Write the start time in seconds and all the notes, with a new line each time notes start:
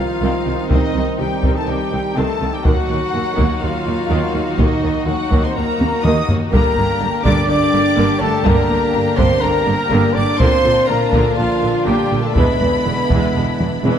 Already playing: D#3 F3 C4 D#4 F4 F5
0.21 C2 D#3 C4
0.46 C2 D#3 C4
0.70 C2 D#3 C4 D#4 D#5, taiko
0.95 C2 D#3 C4
1.19 C2 D#3 G3 C4 G4 G5
1.43 C2 D#3 C4, taiko
1.56 A3 A4 A5
1.66 C2 D#3 G3 C4 G4 G5
1.92 C2 D#3 C4
2.16 C2 D#3 A3 C4 A4 A5
2.40 C2 D#3 C4
2.51 G3 G4 G5
2.63 D#2 D#3 F#3 A#3 D#4 F#4 F#5, taiko
2.88 D#2 D#3 A#3
3.13 D#2 D#3 A#3
3.37 D#2 D#3 A#3, taiko
3.61 D#2 D#3 F#3 A#3 F4 F5
3.86 D#2 D#3 A#3
4.09 D#2 D#3 A#3
4.35 D#2 D#3 A#3
4.58 D#2 D#3 A#3 D#4 D#5, taiko
4.83 D#2 D#3 A#3
5.07 D#2 D#3 F#3 A#3 F#4 F#5
5.31 D#2 D#3 A#3, taiko
5.43 C4 C5 C6
5.56 D#2 D#3 A#3 A#4 A#5
5.80 D#2 D#3 A#3, taiko high
6.03 D#2 D#3 A#3 D#4 D#5 D#6, taiko mid
6.29 D#2 D#3 A#3, taiko low
6.51 G1 G2 D3 A#3 D4 G4 A#4 A#5, taiko
6.76 G1 G2 D3 A#3
7.01 G1 G2 D3 A#3
7.24 G1 G2 D3 A#3 D4 D5 D6, taiko
7.47 G1 G2 D3 A#3 D4 D5 D6
7.73 G1 G2 D3 A#3
7.96 G1 G2 D3 A#3
8.21 G1 G2 D3 A3 A#3 A4 A5
8.44 G1 G2 D3 A#3 A#4 A#5, taiko
8.69 G1 G2 D3 A#3
8.93 G1 G2 D3 A#3
9.16 G1 G2 D3 A#3 C4 C5 C6, taiko
9.41 G1 G2 D3 A#3 A#4 A#5
9.66 G1 G2 D3 A#3
9.91 G1 G2 D3 A#3
10.14 G1 G2 D3 A#3 D4 D5 D6
10.39 A#1 A#2 D3 A#3 C4 D4 F4 C5 C6, taiko
10.64 A#1 A#2 D3 A#3
10.87 A#1 A#2 D3 A#3 A#4 A#5
11.13 A#1 A#2 D3 A#3, taiko
11.36 A#1 A#2 D3 F3 A#3 F4 F5
11.62 A#1 A#2 D3 A#3
11.85 A#1 A#2 D3 G3 A#3 G4 G5
12.11 A#1 A#2 D3 A#3
12.23 A3 A4 A5
12.34 E1 E2 E3 G#3 B3 E4 B4 B5, taiko
12.60 E1 E2 E3 G#3
12.85 E1 E2 E3 G#3
13.10 E1 E2 E3 G#3, taiko
13.36 E1 E2 E3 G#3
13.60 E1 E2 E3 G#3, taiko mid
13.85 E1 E2 E3 G#3, taiko high